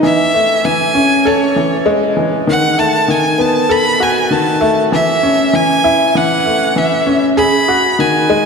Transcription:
0, 0, Header, 1, 3, 480
1, 0, Start_track
1, 0, Tempo, 612245
1, 19, Time_signature, 4, 2, 24, 8
1, 6630, End_track
2, 0, Start_track
2, 0, Title_t, "Violin"
2, 0, Program_c, 0, 40
2, 28, Note_on_c, 0, 76, 111
2, 516, Note_on_c, 0, 80, 111
2, 527, Note_off_c, 0, 76, 0
2, 993, Note_on_c, 0, 73, 91
2, 1005, Note_off_c, 0, 80, 0
2, 1466, Note_off_c, 0, 73, 0
2, 1960, Note_on_c, 0, 78, 111
2, 2187, Note_on_c, 0, 81, 103
2, 2198, Note_off_c, 0, 78, 0
2, 2434, Note_on_c, 0, 80, 101
2, 2446, Note_off_c, 0, 81, 0
2, 2676, Note_on_c, 0, 81, 99
2, 2687, Note_off_c, 0, 80, 0
2, 2911, Note_on_c, 0, 83, 120
2, 2923, Note_off_c, 0, 81, 0
2, 3155, Note_on_c, 0, 80, 105
2, 3167, Note_off_c, 0, 83, 0
2, 3389, Note_on_c, 0, 81, 104
2, 3401, Note_off_c, 0, 80, 0
2, 3744, Note_off_c, 0, 81, 0
2, 3872, Note_on_c, 0, 76, 114
2, 4350, Note_on_c, 0, 80, 107
2, 4362, Note_off_c, 0, 76, 0
2, 4833, Note_on_c, 0, 78, 108
2, 4845, Note_off_c, 0, 80, 0
2, 5314, Note_on_c, 0, 76, 97
2, 5326, Note_off_c, 0, 78, 0
2, 5667, Note_off_c, 0, 76, 0
2, 5782, Note_on_c, 0, 83, 119
2, 6271, Note_on_c, 0, 80, 100
2, 6283, Note_off_c, 0, 83, 0
2, 6630, Note_off_c, 0, 80, 0
2, 6630, End_track
3, 0, Start_track
3, 0, Title_t, "Upright piano"
3, 0, Program_c, 1, 0
3, 0, Control_c, 1, 64, 127
3, 23, Note_on_c, 1, 52, 80
3, 30, Control_c, 1, 64, 0
3, 149, Control_c, 1, 64, 127
3, 158, Note_off_c, 1, 52, 0
3, 269, Note_on_c, 1, 57, 74
3, 492, Note_off_c, 1, 57, 0
3, 508, Note_on_c, 1, 52, 76
3, 640, Note_off_c, 1, 52, 0
3, 742, Note_on_c, 1, 61, 79
3, 877, Note_off_c, 1, 61, 0
3, 983, Note_on_c, 1, 69, 95
3, 1209, Note_off_c, 1, 69, 0
3, 1225, Note_on_c, 1, 52, 73
3, 1450, Note_off_c, 1, 52, 0
3, 1456, Note_on_c, 1, 56, 102
3, 1685, Note_off_c, 1, 56, 0
3, 1699, Note_on_c, 1, 52, 73
3, 1836, Note_off_c, 1, 52, 0
3, 1939, Note_on_c, 1, 51, 86
3, 1951, Control_c, 1, 64, 0
3, 2076, Note_off_c, 1, 51, 0
3, 2105, Control_c, 1, 64, 127
3, 2178, Note_on_c, 1, 57, 72
3, 2407, Note_off_c, 1, 57, 0
3, 2416, Note_on_c, 1, 51, 74
3, 2554, Note_off_c, 1, 51, 0
3, 2652, Note_on_c, 1, 59, 80
3, 2792, Note_off_c, 1, 59, 0
3, 2895, Note_on_c, 1, 69, 99
3, 3125, Note_off_c, 1, 69, 0
3, 3137, Note_on_c, 1, 66, 73
3, 3366, Note_off_c, 1, 66, 0
3, 3376, Note_on_c, 1, 51, 73
3, 3514, Note_off_c, 1, 51, 0
3, 3613, Note_on_c, 1, 57, 105
3, 3753, Note_off_c, 1, 57, 0
3, 3859, Note_on_c, 1, 52, 86
3, 3869, Control_c, 1, 64, 0
3, 3989, Control_c, 1, 64, 127
3, 4087, Note_off_c, 1, 52, 0
3, 4099, Note_on_c, 1, 61, 78
3, 4236, Note_off_c, 1, 61, 0
3, 4338, Note_on_c, 1, 52, 78
3, 4567, Note_off_c, 1, 52, 0
3, 4579, Note_on_c, 1, 64, 106
3, 4807, Note_off_c, 1, 64, 0
3, 4823, Note_on_c, 1, 52, 79
3, 4958, Note_off_c, 1, 52, 0
3, 5063, Note_on_c, 1, 57, 71
3, 5289, Note_off_c, 1, 57, 0
3, 5300, Note_on_c, 1, 52, 75
3, 5436, Note_off_c, 1, 52, 0
3, 5539, Note_on_c, 1, 61, 77
3, 5676, Note_off_c, 1, 61, 0
3, 5780, Note_on_c, 1, 68, 108
3, 5791, Control_c, 1, 64, 0
3, 5914, Control_c, 1, 64, 127
3, 6007, Note_off_c, 1, 68, 0
3, 6024, Note_on_c, 1, 66, 78
3, 6250, Note_off_c, 1, 66, 0
3, 6263, Note_on_c, 1, 51, 77
3, 6398, Note_off_c, 1, 51, 0
3, 6504, Note_on_c, 1, 56, 111
3, 6630, Note_off_c, 1, 56, 0
3, 6630, End_track
0, 0, End_of_file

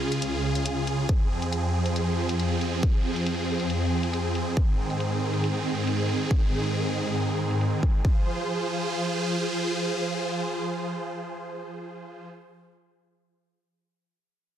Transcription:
0, 0, Header, 1, 3, 480
1, 0, Start_track
1, 0, Key_signature, -4, "minor"
1, 0, Tempo, 434783
1, 1203, Time_signature, 4, 2, 24, 8
1, 16085, End_track
2, 0, Start_track
2, 0, Title_t, "Supersaw synth"
2, 0, Program_c, 0, 81
2, 0, Note_on_c, 0, 37, 71
2, 0, Note_on_c, 0, 49, 66
2, 0, Note_on_c, 0, 65, 69
2, 0, Note_on_c, 0, 68, 71
2, 1166, Note_off_c, 0, 37, 0
2, 1166, Note_off_c, 0, 49, 0
2, 1166, Note_off_c, 0, 65, 0
2, 1205, Note_on_c, 0, 41, 73
2, 1205, Note_on_c, 0, 60, 67
2, 1206, Note_on_c, 0, 53, 67
2, 5000, Note_off_c, 0, 68, 0
2, 5006, Note_off_c, 0, 41, 0
2, 5006, Note_off_c, 0, 53, 0
2, 5045, Note_on_c, 0, 44, 72
2, 5045, Note_on_c, 0, 68, 86
2, 5046, Note_on_c, 0, 51, 70
2, 8840, Note_off_c, 0, 60, 0
2, 8846, Note_off_c, 0, 44, 0
2, 8846, Note_off_c, 0, 51, 0
2, 8846, Note_off_c, 0, 68, 0
2, 8885, Note_on_c, 0, 53, 75
2, 8885, Note_on_c, 0, 65, 69
2, 8885, Note_on_c, 0, 68, 65
2, 8885, Note_on_c, 0, 72, 83
2, 13563, Note_off_c, 0, 53, 0
2, 13563, Note_off_c, 0, 65, 0
2, 13563, Note_off_c, 0, 68, 0
2, 13563, Note_off_c, 0, 72, 0
2, 16085, End_track
3, 0, Start_track
3, 0, Title_t, "Drums"
3, 131, Note_on_c, 9, 42, 49
3, 241, Note_off_c, 9, 42, 0
3, 244, Note_on_c, 9, 42, 69
3, 354, Note_off_c, 9, 42, 0
3, 611, Note_on_c, 9, 42, 51
3, 722, Note_off_c, 9, 42, 0
3, 724, Note_on_c, 9, 42, 74
3, 835, Note_off_c, 9, 42, 0
3, 964, Note_on_c, 9, 42, 46
3, 1075, Note_off_c, 9, 42, 0
3, 1204, Note_on_c, 9, 42, 71
3, 1205, Note_on_c, 9, 36, 113
3, 1315, Note_off_c, 9, 36, 0
3, 1315, Note_off_c, 9, 42, 0
3, 1570, Note_on_c, 9, 42, 45
3, 1681, Note_off_c, 9, 42, 0
3, 1684, Note_on_c, 9, 42, 72
3, 1794, Note_off_c, 9, 42, 0
3, 2050, Note_on_c, 9, 42, 44
3, 2160, Note_off_c, 9, 42, 0
3, 2164, Note_on_c, 9, 42, 68
3, 2274, Note_off_c, 9, 42, 0
3, 2531, Note_on_c, 9, 42, 48
3, 2641, Note_off_c, 9, 42, 0
3, 2644, Note_on_c, 9, 42, 68
3, 2754, Note_off_c, 9, 42, 0
3, 2885, Note_on_c, 9, 42, 46
3, 2995, Note_off_c, 9, 42, 0
3, 3124, Note_on_c, 9, 42, 73
3, 3125, Note_on_c, 9, 36, 105
3, 3235, Note_off_c, 9, 36, 0
3, 3235, Note_off_c, 9, 42, 0
3, 3491, Note_on_c, 9, 42, 45
3, 3601, Note_off_c, 9, 42, 0
3, 3604, Note_on_c, 9, 42, 72
3, 3715, Note_off_c, 9, 42, 0
3, 3971, Note_on_c, 9, 42, 46
3, 4081, Note_off_c, 9, 42, 0
3, 4084, Note_on_c, 9, 42, 67
3, 4194, Note_off_c, 9, 42, 0
3, 4451, Note_on_c, 9, 42, 46
3, 4561, Note_off_c, 9, 42, 0
3, 4565, Note_on_c, 9, 42, 68
3, 4675, Note_off_c, 9, 42, 0
3, 4804, Note_on_c, 9, 42, 45
3, 4915, Note_off_c, 9, 42, 0
3, 5044, Note_on_c, 9, 36, 108
3, 5044, Note_on_c, 9, 42, 76
3, 5154, Note_off_c, 9, 42, 0
3, 5155, Note_off_c, 9, 36, 0
3, 5411, Note_on_c, 9, 42, 43
3, 5521, Note_off_c, 9, 42, 0
3, 5524, Note_on_c, 9, 42, 73
3, 5634, Note_off_c, 9, 42, 0
3, 5890, Note_on_c, 9, 42, 45
3, 6000, Note_off_c, 9, 42, 0
3, 6004, Note_on_c, 9, 42, 66
3, 6114, Note_off_c, 9, 42, 0
3, 6371, Note_on_c, 9, 42, 48
3, 6482, Note_off_c, 9, 42, 0
3, 6484, Note_on_c, 9, 42, 69
3, 6595, Note_off_c, 9, 42, 0
3, 6724, Note_on_c, 9, 42, 48
3, 6835, Note_off_c, 9, 42, 0
3, 6964, Note_on_c, 9, 36, 107
3, 6964, Note_on_c, 9, 42, 76
3, 7074, Note_off_c, 9, 42, 0
3, 7075, Note_off_c, 9, 36, 0
3, 7330, Note_on_c, 9, 42, 44
3, 7440, Note_off_c, 9, 42, 0
3, 7443, Note_on_c, 9, 42, 74
3, 7554, Note_off_c, 9, 42, 0
3, 7810, Note_on_c, 9, 42, 48
3, 7921, Note_off_c, 9, 42, 0
3, 7923, Note_on_c, 9, 42, 69
3, 8034, Note_off_c, 9, 42, 0
3, 8290, Note_on_c, 9, 42, 52
3, 8401, Note_off_c, 9, 42, 0
3, 8403, Note_on_c, 9, 42, 74
3, 8514, Note_off_c, 9, 42, 0
3, 8644, Note_on_c, 9, 36, 54
3, 8644, Note_on_c, 9, 42, 48
3, 8754, Note_off_c, 9, 36, 0
3, 8754, Note_off_c, 9, 42, 0
3, 8884, Note_on_c, 9, 36, 104
3, 8994, Note_off_c, 9, 36, 0
3, 16085, End_track
0, 0, End_of_file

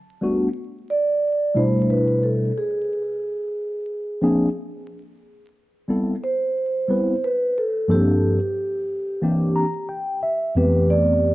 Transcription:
0, 0, Header, 1, 3, 480
1, 0, Start_track
1, 0, Key_signature, 1, "major"
1, 0, Tempo, 666667
1, 1842, Time_signature, 4, 2, 24, 8
1, 8168, End_track
2, 0, Start_track
2, 0, Title_t, "Vibraphone"
2, 0, Program_c, 0, 11
2, 649, Note_on_c, 0, 74, 102
2, 1129, Note_on_c, 0, 72, 91
2, 1140, Note_off_c, 0, 74, 0
2, 1370, Note_on_c, 0, 71, 96
2, 1373, Note_off_c, 0, 72, 0
2, 1608, Note_on_c, 0, 69, 73
2, 1613, Note_off_c, 0, 71, 0
2, 1853, Note_off_c, 0, 69, 0
2, 1855, Note_on_c, 0, 68, 81
2, 3260, Note_off_c, 0, 68, 0
2, 4490, Note_on_c, 0, 72, 98
2, 5215, Note_on_c, 0, 71, 99
2, 5228, Note_off_c, 0, 72, 0
2, 5456, Note_off_c, 0, 71, 0
2, 5458, Note_on_c, 0, 69, 84
2, 5674, Note_off_c, 0, 69, 0
2, 5698, Note_on_c, 0, 67, 81
2, 7101, Note_off_c, 0, 67, 0
2, 7610, Note_on_c, 0, 71, 84
2, 7849, Note_on_c, 0, 74, 95
2, 7854, Note_off_c, 0, 71, 0
2, 8168, Note_off_c, 0, 74, 0
2, 8168, End_track
3, 0, Start_track
3, 0, Title_t, "Tine electric piano"
3, 0, Program_c, 1, 4
3, 153, Note_on_c, 1, 55, 73
3, 157, Note_on_c, 1, 57, 66
3, 163, Note_on_c, 1, 59, 68
3, 166, Note_on_c, 1, 62, 65
3, 168, Note_on_c, 1, 66, 81
3, 338, Note_off_c, 1, 55, 0
3, 340, Note_off_c, 1, 57, 0
3, 343, Note_off_c, 1, 59, 0
3, 345, Note_off_c, 1, 62, 0
3, 346, Note_off_c, 1, 66, 0
3, 1112, Note_on_c, 1, 55, 73
3, 1117, Note_on_c, 1, 57, 67
3, 1120, Note_on_c, 1, 47, 64
3, 1125, Note_on_c, 1, 62, 67
3, 1130, Note_on_c, 1, 64, 79
3, 1797, Note_off_c, 1, 55, 0
3, 1800, Note_off_c, 1, 57, 0
3, 1801, Note_off_c, 1, 47, 0
3, 1804, Note_off_c, 1, 62, 0
3, 1806, Note_off_c, 1, 64, 0
3, 3035, Note_on_c, 1, 53, 86
3, 3039, Note_on_c, 1, 58, 75
3, 3044, Note_on_c, 1, 60, 73
3, 3047, Note_on_c, 1, 62, 77
3, 3052, Note_on_c, 1, 68, 96
3, 3219, Note_off_c, 1, 53, 0
3, 3221, Note_off_c, 1, 58, 0
3, 3223, Note_off_c, 1, 60, 0
3, 3225, Note_off_c, 1, 62, 0
3, 3227, Note_off_c, 1, 68, 0
3, 4234, Note_on_c, 1, 55, 71
3, 4240, Note_on_c, 1, 59, 65
3, 4243, Note_on_c, 1, 60, 61
3, 4244, Note_on_c, 1, 64, 58
3, 4250, Note_on_c, 1, 69, 74
3, 4418, Note_off_c, 1, 55, 0
3, 4421, Note_off_c, 1, 59, 0
3, 4423, Note_off_c, 1, 60, 0
3, 4424, Note_off_c, 1, 64, 0
3, 4426, Note_off_c, 1, 69, 0
3, 4953, Note_on_c, 1, 55, 65
3, 4959, Note_on_c, 1, 59, 61
3, 4962, Note_on_c, 1, 60, 60
3, 4966, Note_on_c, 1, 64, 58
3, 4971, Note_on_c, 1, 71, 73
3, 5138, Note_off_c, 1, 55, 0
3, 5141, Note_off_c, 1, 59, 0
3, 5143, Note_off_c, 1, 60, 0
3, 5144, Note_off_c, 1, 64, 0
3, 5147, Note_off_c, 1, 71, 0
3, 5672, Note_on_c, 1, 43, 75
3, 5677, Note_on_c, 1, 53, 68
3, 5681, Note_on_c, 1, 58, 65
3, 5682, Note_on_c, 1, 60, 72
3, 5687, Note_on_c, 1, 62, 70
3, 5689, Note_on_c, 1, 69, 81
3, 6030, Note_off_c, 1, 43, 0
3, 6032, Note_off_c, 1, 53, 0
3, 6034, Note_off_c, 1, 58, 0
3, 6035, Note_off_c, 1, 60, 0
3, 6037, Note_off_c, 1, 62, 0
3, 6038, Note_off_c, 1, 69, 0
3, 6636, Note_on_c, 1, 52, 76
3, 6639, Note_on_c, 1, 58, 72
3, 6645, Note_on_c, 1, 60, 71
3, 6647, Note_on_c, 1, 62, 70
3, 6652, Note_on_c, 1, 67, 86
3, 6881, Note_on_c, 1, 82, 65
3, 6935, Note_off_c, 1, 52, 0
3, 6937, Note_off_c, 1, 58, 0
3, 6940, Note_off_c, 1, 60, 0
3, 6941, Note_off_c, 1, 62, 0
3, 6944, Note_off_c, 1, 67, 0
3, 7105, Note_off_c, 1, 82, 0
3, 7120, Note_on_c, 1, 79, 66
3, 7344, Note_off_c, 1, 79, 0
3, 7364, Note_on_c, 1, 76, 74
3, 7587, Note_off_c, 1, 76, 0
3, 7596, Note_on_c, 1, 41, 65
3, 7601, Note_on_c, 1, 52, 62
3, 7604, Note_on_c, 1, 56, 48
3, 7607, Note_on_c, 1, 59, 65
3, 7609, Note_on_c, 1, 60, 60
3, 7613, Note_on_c, 1, 67, 73
3, 7652, Note_on_c, 1, 57, 60
3, 7658, Note_off_c, 1, 56, 0
3, 8168, Note_off_c, 1, 41, 0
3, 8168, Note_off_c, 1, 52, 0
3, 8168, Note_off_c, 1, 57, 0
3, 8168, Note_off_c, 1, 59, 0
3, 8168, Note_off_c, 1, 60, 0
3, 8168, Note_off_c, 1, 67, 0
3, 8168, End_track
0, 0, End_of_file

